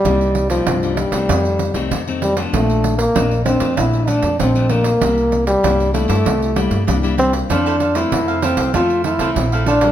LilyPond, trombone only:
\new Staff \with { instrumentName = "Trombone" } { \time 4/4 \key c \mixolydian \tempo 4 = 97 g8. f8. g4. r8 g8 | a8. bes8. c'8 e'8 d'8 c'8 bes8~ | bes8. g8. a4. r8 c'8 | d'8. e'8. c'8 f'8 e'4 d'8 | }